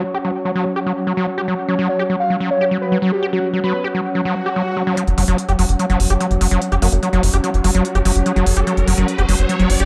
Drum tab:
HH |----------------|----------------|----------------|xxoxxxoxxxoxxxox|

HH |xxoxxxoxxxoxxxox|xxoxxxoxxxoxxxox|